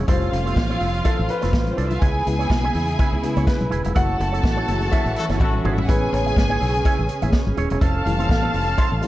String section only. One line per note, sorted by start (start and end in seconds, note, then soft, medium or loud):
0.00 1.98 C#4 medium
0.08 2.00 F3 medium
0.08 2.00 F4 medium
2.03 3.94 C#3 medium
2.03 3.94 B3 medium
2.03 3.94 E4 medium
3.95 5.87 E3 medium
3.95 9.07 C#4 medium
3.95 5.87 F#4 medium
5.88 7.79 C#3 medium
5.88 7.79 G#4 medium
7.81 9.07 F5 medium